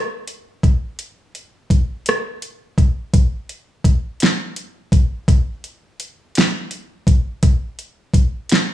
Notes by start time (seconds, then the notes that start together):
0.28 closed hi-hat
0.63 kick, closed hi-hat
0.99 closed hi-hat
1.35 closed hi-hat
1.70 kick, closed hi-hat
2.06 cross-stick, closed hi-hat
2.42 closed hi-hat
2.78 kick, closed hi-hat
3.14 kick, closed hi-hat
3.49 closed hi-hat
3.84 kick, closed hi-hat
4.20 snare, closed hi-hat
4.56 closed hi-hat
4.92 kick, closed hi-hat
5.28 kick, closed hi-hat
5.64 closed hi-hat
6.00 closed hi-hat
6.35 snare, closed hi-hat
6.71 closed hi-hat
7.07 kick, closed hi-hat
7.43 kick, closed hi-hat
7.79 closed hi-hat
8.14 kick, closed hi-hat
8.49 snare, closed hi-hat